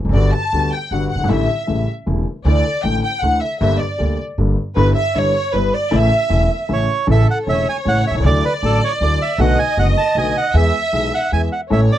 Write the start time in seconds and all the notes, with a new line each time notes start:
0.05 F1 F2
0.09 F#1 F#2 D5
0.14 G1 G2 D3 G3 B3 F#4
0.32 A5
0.53 D2 D3 G3 B3 F#4
0.72 G5
0.91 G1 G2 D3 G3 B3 F#4 F#5
1.10 F#5
1.15 F#1 G1
1.20 G1
1.24 G#1
1.29 A1 A2 D3 G3 A3 E4 E5
1.67 A1 A2 C#3 G3 A3 E4
2.06 E1 E2 C#3 G3 A3 E4
2.45 D2 D3 E3 A3 E4 D5
2.84 A1 A2 D3 E3 A3 E4 G5
3.04 G5
3.22 D2 D3 E3 A3 E4 F#5
3.41 E5
3.60 G1 G2 D3 G3 A#3 G4 E5
3.79 D5
3.98 D2 D3 G3 A#3 G4
4.38 G1 G2 D3 G3 A#3 G4
4.75 G1 G2 D3 G3 B3 E4 B4
4.95 E5
5.15 G1 G2 D3 G3 B3 E4 C#5
5.53 G1 G2 D3 G3 B3 E4 B4
5.73 D5
5.91 A1 A2 C#3 E3 A3 E4 E5
6.29 E1 E2 C#3 E3 A3 E4
6.69 A1 A2 C#3 E3 A3 E4
6.73 C#5
7.07 A1 A2 C#3 E3 A3 E4 A4
7.12 E5
7.31 F#5
7.47 E1 E2 C#3 E3 A3 E4 C#5 E5
7.69 G#5
7.85 A1 A2 C#3 E3 A3 E4 F#5
8.07 B1 E5
8.14 C2
8.19 C#2
8.24 D2 D3 F#3 A3 E4 D5
8.45 B4
8.62 A1 A2 D3 F#3 A3 E4 A4
8.84 C#5
9.01 D2 D3 F#3 A3 E4 D5
9.22 E5
9.37 B1 B2 D3 A3 B3 F#4 D#5 F#5
9.59 G#5
9.77 F#1 F#2 D3 A3 B3 F#4 F#5
9.98 A5
10.15 B1 B2 D3 A3 B3 F#4 G#5
10.38 F#5
10.54 E2 E3 G#3 B3 G#4 E5
10.93 B1 B2 E3 G#3 B3 G#4 E5
11.14 F#5
11.32 E2 E3 G#3 B3 G#4 G#5
11.52 F#5
11.70 A1 A2 E3 A3 C#4 A4 C#5 E5
11.92 D5